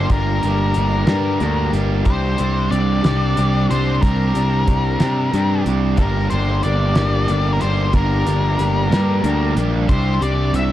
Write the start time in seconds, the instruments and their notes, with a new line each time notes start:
Already playing: clean electric guitar G3 D4 G4
0.09 picked electric bass G1, clean electric guitar G2 D3 G3 A#3 D4 G4, lead electric guitar A#4, kick, closed hi-hat
0.43 picked electric bass G1, clean electric guitar G3 A#3 D4 G4, closed hi-hat
0.74 picked electric bass G1, clean electric guitar G3 A#3 D4 G4, closed hi-hat
1.06 picked electric bass G2, overdriven electric guitar G2 D3, clean electric guitar G3 A#3 D4 G4, snare, closed hi-hat
1.40 picked electric bass D2, clean electric guitar G3 A#3 D4 G4, closed hi-hat
1.73 picked electric bass G1, clean electric guitar G3 A#3 D4 G4, closed hi-hat
2.04 picked electric bass C2, clean electric guitar C3 G3 C4 D4 G4, lead electric guitar C5, kick, closed hi-hat
2.38 picked electric bass C2, clean electric guitar C4 D4 G4, closed hi-hat
2.69 picked electric bass C2, clean electric guitar G3 C4 D4 G4, lead electric guitar D5, closed hi-hat
3.03 picked electric bass C2, clean electric guitar C4 D4 G4, snare, closed hi-hat
3.07 overdriven electric guitar C3 G3
3.36 picked electric bass C2, clean electric guitar G3 C4 D4 G4, closed hi-hat
3.69 picked electric bass C2, clean electric guitar C4 D4 G4, lead electric guitar C5, closed hi-hat
4.01 picked electric bass C2, clean electric guitar C3 G3 C4 D4 G4, lead electric guitar A#4, kick, closed hi-hat
4.07 overdriven electric guitar G4
4.34 picked electric bass C2, clean electric guitar C4 D4 G4, closed hi-hat
4.67 picked electric bass C2, clean electric guitar G3 C4 D4 G4, kick, closed hi-hat
4.98 clean electric guitar C4 D4 G4, snare, closed hi-hat
5.02 picked electric bass C3, overdriven electric guitar C3 G3
5.32 picked electric bass G2, clean electric guitar G3 C4 D4 G4, closed hi-hat
5.64 picked electric bass C2, clean electric guitar C4 D4 G4, closed hi-hat
5.97 picked electric bass G1, clean electric guitar G2 D3 G3 A#3 D4 G4, lead electric guitar A#4, kick, closed hi-hat
6.30 picked electric bass G1, clean electric guitar G3 A#3 D4 G4, lead electric guitar C5, closed hi-hat
6.63 picked electric bass G1, clean electric guitar G3 A#3 D4 G4, lead electric guitar D5, closed hi-hat
6.95 picked electric bass G1, overdriven electric guitar G2 D3, clean electric guitar G3 A#3 D4 G4, snare, closed hi-hat
7.28 picked electric bass G1, clean electric guitar G3 A#3 D4 G4, closed hi-hat
7.53 lead electric guitar A#4
7.60 picked electric bass G1, clean electric guitar G3 A#3 D4 G4, lead electric guitar C5, closed hi-hat
7.91 picked electric bass G1, clean electric guitar G2 D3 G3 A#3 D4 G4, kick, closed hi-hat
7.96 lead electric guitar A#4
8.25 picked electric bass G1, clean electric guitar G3 A#3 D4 G4, closed hi-hat
8.59 picked electric bass G1, clean electric guitar G3 A#3 D4 G4, closed hi-hat
8.90 picked electric bass G2, clean electric guitar G3 A#3 D4 G4, snare, closed hi-hat
8.94 overdriven electric guitar G2 D3
9.22 picked electric bass D2, clean electric guitar G3 A#3 D4 G4, closed hi-hat
9.55 picked electric bass A#1, clean electric guitar G3 A#3 D4 G4, closed hi-hat
9.88 picked electric bass C2, clean electric guitar C3 G3 C4 D4 G4, lead electric guitar C5, kick, closed hi-hat
10.21 picked electric bass C2, clean electric guitar C4 D4 G4, lead electric guitar D5, closed hi-hat
10.53 picked electric bass C2, clean electric guitar G3 C4 D4 G4, lead electric guitar E5, closed hi-hat